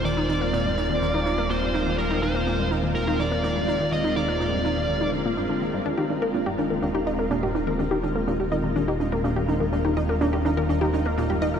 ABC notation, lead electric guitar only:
X:1
M:4/4
L:1/8
Q:1/4=124
K:Eb
V:1 name="Lead electric guitar"
d6 c2 | B c2 z B d3 | e d4 z3 | z8 |
z8 | z8 |]